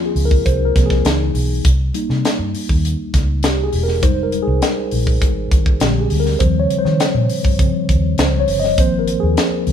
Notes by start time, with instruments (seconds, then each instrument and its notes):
Already playing: tine electric piano F3 A#3 C4 F4
0.06 tine electric piano G#4
0.15 fingered electric bass C#2, open hi-hat
0.25 tine electric piano A#4
0.31 kick
0.45 fingered electric bass C2, tine electric piano C5, kick, closed hi-hat
0.65 tine electric piano A#4
0.75 fingered electric bass C2, tine electric piano F3 A#3 C4, kick, snare, closed hi-hat
0.86 tine electric piano G#4
0.90 kick, snare
1.05 fingered electric bass C#2, tine electric piano E3 B3 D#4, snare, closed hi-hat
1.34 fingered electric bass B1, open hi-hat
1.65 fingered electric bass C2, kick, closed hi-hat
1.94 tine electric piano G3 A#3 D#4, closed hi-hat
2.09 fingered electric bass C3, snare
2.25 snare, closed hi-hat
2.39 fingered electric bass G2
2.55 open hi-hat
2.69 fingered electric bass D#2, kick
2.85 closed hi-hat
3.14 fingered electric bass C#2, kick, snare, closed hi-hat
3.43 fingered electric bass C2, tine electric piano G4, snare, closed hi-hat
3.63 tine electric piano G#4
3.73 fingered electric bass E1, open hi-hat
3.83 tine electric piano A#4
3.88 snare
4.02 fingered electric bass F1, tine electric piano G3 G#3 D#4 C5, kick, closed hi-hat
4.23 tine electric piano A#4
4.32 closed hi-hat
4.43 tine electric piano G#4
4.47 fingered electric bass C2
4.62 snare, closed hi-hat
4.91 fingered electric bass A#1, open hi-hat
5.07 kick
5.22 fingered electric bass G#1, kick, closed hi-hat
5.51 fingered electric bass G#1, kick, closed hi-hat
5.66 kick
5.80 fingered electric bass A#1, tine electric piano D3 G3 G#3 C4 G4, snare, closed hi-hat
6.00 tine electric piano G#4
6.10 fingered electric bass D2, open hi-hat
6.20 tine electric piano A#4
6.26 snare
6.39 fingered electric bass D#2, tine electric piano C#3 F3 G3 C4 C5, kick, closed hi-hat
6.60 tine electric piano C#5
6.70 closed hi-hat
6.79 tine electric piano C5
6.85 fingered electric bass D#3, snare
7.00 snare, closed hi-hat
7.15 fingered electric bass A#2
7.29 open hi-hat
7.45 fingered electric bass G2, kick
7.59 tine electric piano C#3 F3 G3 C4, kick, closed hi-hat
7.89 fingered electric bass D#2, kick, closed hi-hat
8.18 fingered electric bass C#2, tine electric piano C5, snare, closed hi-hat
8.40 tine electric piano C#5
8.48 fingered electric bass G1, open hi-hat
8.60 tine electric piano D#5
8.64 snare
8.78 fingered electric bass G#1, tine electric piano F3 A#3 C4 C5, kick, closed hi-hat
8.99 tine electric piano A#4
9.07 closed hi-hat
9.20 fingered electric bass D#2, tine electric piano G#4
9.37 snare, closed hi-hat
9.67 fingered electric bass C#2, tine electric piano F3 A#3 C4, open hi-hat